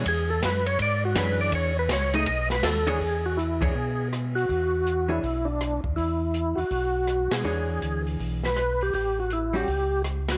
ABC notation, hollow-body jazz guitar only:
X:1
M:4/4
L:1/8
Q:"Swing" 1/4=162
K:Bdor
V:1 name="Hollow-body jazz guitar"
z6 [E,DGc]2- | [E,DGc] z2 [A,^DG] z3 [E,=DGc] | z3 [E,DGc] z4 | z3 [E,DGc] z4 |
z8 | [E,DGc]4- [E,DGc] z3 | z3 [=G,CF] z4 |]